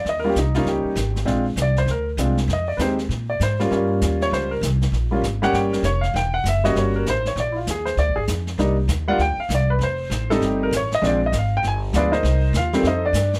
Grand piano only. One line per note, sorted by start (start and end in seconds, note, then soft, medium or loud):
0.09 0.17 D#5 medium
0.19 0.27 A#4 medium
0.24 0.34 G3 medium
0.24 0.35 A#3 medium
0.24 0.35 C#4 medium
0.24 0.35 F4 medium
0.30 0.37 G4 medium
0.38 0.55 D#4 medium
0.55 0.95 G3 medium
0.55 0.95 A#3 medium
0.55 0.95 C#4 medium
0.55 0.96 D#4 medium
0.55 0.66 F4 medium
0.69 1.24 G4 medium
1.25 1.43 G#3 medium
1.25 1.44 C4 medium
1.25 1.44 D4 medium
1.25 1.44 F4 medium
1.62 1.78 D5 medium
1.78 1.89 C5 medium
1.91 2.08 A#4 medium
2.19 2.36 G#3 medium
2.19 2.36 C4 medium
2.19 2.36 D4 medium
2.19 2.36 F4 medium
2.53 2.69 D#5 medium
2.68 2.79 D5 medium
2.77 2.97 G#3 medium
2.77 2.97 C4 medium
2.77 2.97 D#4 medium
2.77 2.79 B4 medium
2.81 2.98 G4 medium
2.81 2.92 C5 medium
3.30 3.41 D5 medium
3.43 3.60 C5 medium
3.59 3.70 G3 medium
3.59 3.70 A#3 medium
3.59 3.70 C#4 medium
3.59 3.70 F4 medium
3.59 3.71 A#4 medium
3.71 4.56 G3 medium
3.71 4.56 A#3 medium
3.71 4.56 C#4 medium
3.71 4.56 F4 medium
4.22 4.33 C#5 medium
4.33 4.51 C5 medium
4.51 4.58 A#4 medium
5.11 5.22 G3 medium
5.11 5.22 A#3 medium
5.11 5.22 C#4 medium
5.11 5.22 F4 medium
5.42 5.82 G3 medium
5.42 5.82 A#3 medium
5.42 5.82 C#4 medium
5.42 5.82 G4 medium
5.42 5.54 F#5 loud
5.54 5.72 G5 medium
5.73 5.84 A#4 medium
5.85 6.03 C#5 medium
6.01 6.13 F5 medium
6.16 6.34 G5 medium
6.34 6.45 F#5 medium
6.48 6.65 E5 medium
6.64 7.04 G3 medium
6.64 7.04 A#3 medium
6.64 7.04 C#4 medium
6.64 7.04 F#4 medium
6.64 6.76 D#5 medium
6.79 6.95 C#5 medium
6.96 7.06 A#4 medium
7.10 7.26 C5 medium
7.27 7.37 C#5 medium
7.40 7.56 D5 medium
7.52 7.54 E4 soft
7.57 7.67 F4 medium
7.71 7.87 G#4 medium
7.86 7.97 C5 medium
7.99 8.16 D5 medium
8.16 8.23 G#4 medium
8.59 8.76 G3 medium
8.59 8.75 A#3 medium
8.59 8.76 D4 medium
8.59 8.76 D#4 medium
9.08 9.18 G3 medium
9.08 9.18 A#3 medium
9.08 9.19 D4 medium
9.08 9.19 F4 medium
9.08 9.19 F#5 loud
9.21 9.38 G5 loud
9.40 9.50 F5 medium
9.55 9.71 D5 medium
9.70 9.80 B4 medium
9.83 10.28 C5 medium
10.30 10.70 G3 medium
10.30 10.70 A3 medium
10.30 10.70 C4 medium
10.30 10.70 D#4 medium
10.30 10.41 A4 medium
10.45 10.61 G4 medium
10.63 10.73 A#4 medium
10.77 10.92 C#5 medium
10.95 11.04 D#5 loud
11.02 11.19 F3 medium
11.02 11.19 G#3 medium
11.02 11.19 C4 medium
11.02 11.19 D4 medium
11.07 11.23 D5 medium
11.26 11.35 D#5 medium
11.38 11.54 F5 medium
11.57 11.65 G5 loud
11.68 11.77 G#5 medium
11.93 12.10 F3 medium
11.93 12.11 G#3 medium
11.93 12.11 B3 soft
11.93 12.13 D4 medium
11.93 12.11 F4 medium
11.93 12.14 G#4 medium
11.93 12.13 B4 medium
11.93 12.13 D5 medium
12.12 12.51 D#4 medium
12.12 12.51 A#4 medium
12.12 12.51 C5 medium
12.12 12.51 D#5 medium
12.57 12.84 F4 medium
12.57 12.84 F5 medium
12.73 12.84 D#3 medium
12.73 12.83 G3 medium
12.73 12.84 A3 medium
12.73 12.84 C4 medium
12.87 13.05 D#4 medium
12.87 13.05 A4 medium
12.87 13.04 C5 medium
12.87 13.04 D#5 medium
13.06 13.33 D4 medium
13.06 13.33 D5 medium